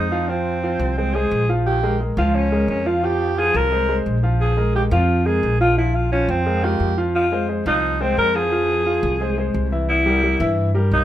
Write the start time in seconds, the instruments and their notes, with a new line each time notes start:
Already playing: upright bass F2, alto saxophone D#4
0.11 grand piano F3 F4 F5
0.28 grand piano F3 F4 F5, alto saxophone C4
0.63 grand piano F3 F4 F5
0.79 upright bass C2
0.98 grand piano G#3 G#4 C5, alto saxophone C4
1.15 grand piano G#3 G#4 C5, alto saxophone G#4
1.31 upright bass A#1
1.49 grand piano F3 F4 F5
1.66 alto saxophone G4
1.83 grand piano G#3 G#4 A#4
2.00 grand piano G#3 G#4 A#4
2.17 upright bass C#2, grand piano F3 F4 F5, alto saxophone F4
2.35 alto saxophone C#4
2.52 grand piano G#3 G#4 A#4
2.70 alto saxophone C#4
2.86 grand piano F3 F4 F5, alto saxophone F4
3.03 grand piano F3 F4 F5, alto saxophone G4
3.38 grand piano F3 F4 F5, alto saxophone G#4
3.54 upright bass C2, alto saxophone A#4
3.72 grand piano G#3 G#4 C5
3.88 grand piano G#3 G#4 C5
4.06 upright bass A#1
4.23 grand piano F3 F4 F5
4.41 alto saxophone G#4
4.57 grand piano G#3 G#4 A#4
4.75 grand piano G#3 G#4 A#4, alto saxophone G4
4.91 upright bass F2, grand piano F3 F4 F5, alto saxophone F4
5.26 grand piano G#3 G#4 A#4, alto saxophone G#4
5.43 upright bass A#1
5.61 grand piano F3 F4 F5, alto saxophone F4
5.78 grand piano F3 F4 F5, alto saxophone E4
5.95 alto saxophone F4
6.12 grand piano F3 F4 F5, alto saxophone C#4
6.29 upright bass F2, alto saxophone C4
6.46 grand piano G#3 G#4 A#4
6.63 grand piano G#3 F4 A#4, alto saxophone G4
6.80 upright bass F2
6.98 grand piano F3 F4 F5
7.15 alto saxophone F4
7.32 grand piano G#3 G#4 C5
7.49 grand piano G#3 G#4 C5
7.66 upright bass C2, grand piano F3 F4 F5, alto saxophone D#4
8.01 grand piano G#3 G#4 C5, alto saxophone C4
8.17 upright bass F2, alto saxophone A#4
8.35 grand piano F3 F4 F5, alto saxophone G#4
8.52 grand piano F3 F4 F5
8.86 grand piano F3 F4 F5
9.03 upright bass C2
9.21 grand piano G#3 G#4 C5
9.38 grand piano G#3 G#4 C5
9.54 upright bass C2
9.72 grand piano E3 E4 E5
9.89 alto saxophone E4
10.06 grand piano G3 G4 A#4
10.23 grand piano G3 G4 A#4
10.40 upright bass G2, grand piano E3 E4 E5
10.75 grand piano G3 G4 A#4
10.91 upright bass C2, alto saxophone D#4